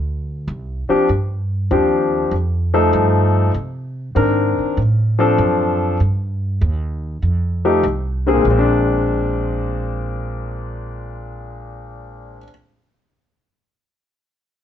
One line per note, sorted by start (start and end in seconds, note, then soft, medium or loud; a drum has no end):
0.00 0.46 D2 medium
0.47 0.86 C2 medium
0.89 1.07 F3 medium
0.89 1.07 C4 medium
0.89 1.07 D4 medium
0.89 1.07 G4 medium
0.89 muted upright bass stroke soft
1.09 1.68 G2 medium
1.71 2.30 D#2 medium
1.71 2.32 F3 medium
1.71 2.32 C4 soft
1.71 2.32 D4 soft
1.71 2.32 G4 medium
2.31 2.91 F2 medium
2.74 3.50 F3 medium
2.74 3.51 A3 medium
2.74 3.51 D#4 medium
2.74 3.51 A4 medium
2.93 3.52 G2 medium
3.54 4.14 C3 medium
4.15 4.55 G#2 medium
4.15 4.77 D#3 medium
4.15 4.77 C4 medium
4.15 4.77 D4 medium
4.15 4.77 A#4 medium
4.59 muted upright bass stroke soft
4.77 5.37 A2 medium
5.19 5.96 F3 medium
5.19 5.96 C4 medium
5.19 5.96 D4 medium
5.19 5.96 A4 medium
5.38 5.98 F#2 medium
6.00 6.60 G2 medium
6.61 7.21 D#2 medium
7.22 7.82 F2 medium
7.65 7.82 F3 medium
7.65 7.82 A3 medium
7.65 7.83 D#4 medium
7.65 7.82 G4 medium
7.83 8.43 C2 medium
8.27 8.44 D3 medium
8.27 8.44 A#3 medium
8.27 8.44 C4 medium
8.27 8.45 G#4 medium
8.34 12.35 A#2 medium
8.42 12.37 A#1 medium
8.42 12.39 G#3 medium
8.51 12.44 C4 medium
8.59 12.48 D4 medium